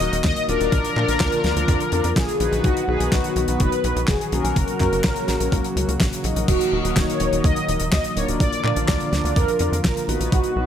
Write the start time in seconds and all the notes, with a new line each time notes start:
Already playing: D#3 F#3 A#3 F#4 D#5
0.00 D#1 D#4 F#4 A#4 D#5, closed hi-hat
0.12 D#1, closed hi-hat
0.24 D#2 D#5, kick, snare, clap, closed hi-hat
0.36 closed hi-hat
0.48 D#1 D4 F4 A#4 D5, closed hi-hat
0.60 D#1, closed hi-hat
0.72 A#1 D3 F3 F4, kick, closed hi-hat
0.85 closed hi-hat
0.96 A#2 D4 F4 A#4 D5, clap
1.08 A#1, closed hi-hat
1.20 D2, kick, snare, clap, closed hi-hat
1.32 closed hi-hat
1.44 D2 D4 F4 A#4 D5, snare, closed hi-hat
1.56 D2 D4 F4 A#4 D5, closed hi-hat
1.68 F2, kick, closed hi-hat
1.80 closed hi-hat
1.92 F2 D4 F4 A#4 D5, closed hi-hat
2.04 F2, closed hi-hat
2.16 A#1 G#4, kick, snare, clap, closed hi-hat
2.29 closed hi-hat
2.40 A#1 B3 D#4 F#4 B4, closed hi-hat
2.52 A#1, closed hi-hat
2.64 B1 D#3 F#3 B3 F#4, kick, closed hi-hat
2.77 closed hi-hat
2.88 B1 B3 D#4 F#4 G#4 B4
3.00 B1, closed hi-hat
3.12 B1 F#4, kick, snare, clap, closed hi-hat
3.24 closed hi-hat
3.36 B1 B3 D#4 F#4 B4, closed hi-hat
3.48 B1 B3 D#4 F#4 B4, closed hi-hat
3.60 F#1 B4, kick, closed hi-hat
3.72 closed hi-hat
3.84 B1 B3 D#4 F#4 B4, closed hi-hat
3.96 B1, closed hi-hat
4.08 F#1 G#4, kick, snare, clap, closed hi-hat
4.21 closed hi-hat
4.32 B1 A#3 C#4 F#4 A#4, closed hi-hat
4.44 B1, closed hi-hat
4.56 F#1 C#3 A#3 A#4, kick, closed hi-hat
4.68 closed hi-hat
4.80 F#2 A#3 C#4 F#4 A#4, kick, clap, closed hi-hat
4.92 F#1, closed hi-hat
5.04 A#1, kick, snare, clap, closed hi-hat
5.16 closed hi-hat
5.28 A#1 A#3 C#4 F#4 A#4, snare, closed hi-hat
5.40 A#1 A#3 C#4 F#4 A#4, closed hi-hat
5.52 C#2, kick, closed hi-hat
5.64 closed hi-hat
5.76 C#2 A#3 C#4 F#4 A#4, closed hi-hat
5.88 C#2, closed hi-hat
6.00 A#1, kick, snare, clap, closed hi-hat
6.13 closed hi-hat
6.24 A#1 D#4 F#4 A#4 D#5, closed hi-hat
6.36 A#1, closed hi-hat
6.48 D#1 D#3 F#4, kick, closed hi-hat, crash
6.61 closed hi-hat
6.72 D#1 D#4 F#4 A#4 D#5
6.84 D#1, closed hi-hat
6.96 D#1 C#5, kick, snare, clap, closed hi-hat
7.10 closed hi-hat
7.20 D#1 D#4 F#4 A#4 D#5, closed hi-hat
7.32 D#1 D#4 F#4 A#4 D#5, closed hi-hat
7.44 D#2 D#5, kick, closed hi-hat
7.56 closed hi-hat
7.68 D#1 D#4 F#4 A#4 D#5, closed hi-hat
7.80 D#1, closed hi-hat
7.92 D#2 D#5, kick, snare, clap, closed hi-hat
8.04 closed hi-hat
8.16 D#1 D4 F4 A#4 C#5 D5, closed hi-hat
8.28 D#1, closed hi-hat
8.40 A#1 D3 F3 F4 D5, kick, closed hi-hat
8.53 closed hi-hat
8.64 A#2 D4 F4 A#4 D5, clap
8.76 A#1, closed hi-hat
8.88 D2 D5, kick, snare, clap, closed hi-hat
9.00 closed hi-hat
9.12 D2 D4 F4 A#4 D5, snare, closed hi-hat
9.24 D2 D4 F4 A#4 D5, closed hi-hat
9.36 F2 A#4, kick, closed hi-hat
9.48 closed hi-hat
9.59 F2 D4 F4 A#4 D5, closed hi-hat
9.72 F2, closed hi-hat
9.84 A#1 A#4, kick, snare, clap, closed hi-hat
9.97 closed hi-hat
10.08 A#1 B3 D#4 F#4 B4, closed hi-hat
10.20 A#1, closed hi-hat
10.32 B1 D#3 F#3 B3 F#4, kick, closed hi-hat
10.44 closed hi-hat
10.56 B1 B3 D#4 F#4 B4